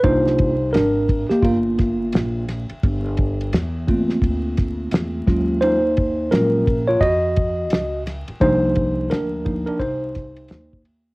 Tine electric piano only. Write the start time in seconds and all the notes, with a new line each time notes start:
0.03 A#3 D4 D#4 F4 C5
0.73 D4 A#4
1.30 A#3 G4
1.43 A#3 F4
3.87 A3 A#3 C4 F4
5.27 F#3 G#3 C#4 F4
5.61 D#4 C5
6.31 F#3 G#3 C#4 F4 A#4
6.87 F4 C#5
7.01 F#4 D#5
8.40 F3 A#3 D4 D#4 C5
9.10 D4 A#4
9.45 F3 A#3 D4 D#4
9.66 D4 A#4
9.79 D#4 C5